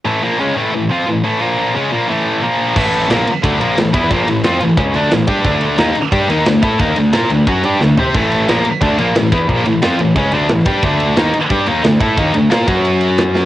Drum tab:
CC |--------|--------|x-------|--------|
RD |--------|--------|-xxxxxxx|xxxxxxxx|
SD |--------|--------|--o---o-|--o---o-|
FT |--------|--------|--------|--------|
BD |--------|--------|o---o--o|o---o--o|

CC |--------|--------|x-------|--------|
RD |xxxxxxxx|xxxxxx--|-xxxxxxx|xxxxxxxx|
SD |--o---o-|--o---o-|--o---o-|--o---o-|
FT |--------|-------o|--------|--------|
BD |o---o--o|o---o---|o---o--o|o---o--o|

CC |--------|--------|
RD |xxxxxxxx|xxxxxxx-|
SD |--o---o-|--o---oo|
FT |--------|--------|
BD |o---o--o|o--o----|